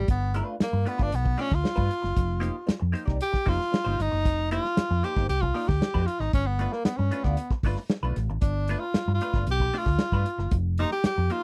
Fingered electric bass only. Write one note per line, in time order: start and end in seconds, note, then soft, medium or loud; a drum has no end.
0.08 0.40 G1 loud
0.61 muted fingered electric bass stroke soft
0.73 0.84 G2 medium
0.99 1.10 G1 medium
1.14 1.34 B1 medium
1.52 1.62 D2 medium
1.77 1.88 G2 loud
2.04 2.14 F#1 medium
2.17 2.48 F1 loud
2.69 muted fingered electric bass stroke soft
2.82 2.93 F2 medium
3.08 3.18 C2 medium
3.34 muted fingered electric bass stroke soft
3.47 3.57 F1 medium
3.86 3.97 G1 medium
3.99 4.10 G1 medium
4.12 4.26 F#1 medium
4.26 4.57 F1 loud
4.78 muted fingered electric bass stroke soft
4.91 5.01 F2 medium
5.16 5.27 G1 medium
5.29 5.50 C2 medium
5.69 5.79 D2 medium
5.94 6.05 F2 loud
6.20 6.31 G#1 medium
6.34 6.65 G1 loud
6.85 muted fingered electric bass stroke soft
6.99 7.10 G2 medium
7.24 7.35 D2 medium
7.50 muted fingered electric bass stroke soft
7.63 7.74 G1 medium
8.03 8.14 B1 medium
8.16 8.27 A1 loud
8.29 8.40 G#1 medium
8.42 8.74 G1 loud
8.95 muted fingered electric bass stroke soft
9.08 9.18 G2 loud
9.34 9.44 G1 medium
9.47 9.68 B1 medium
9.86 9.97 D2 medium
10.12 10.23 G2 medium
10.38 10.49 F#1 medium
10.51 10.83 F1 loud
11.05 muted fingered electric bass stroke soft
11.18 11.28 F2 medium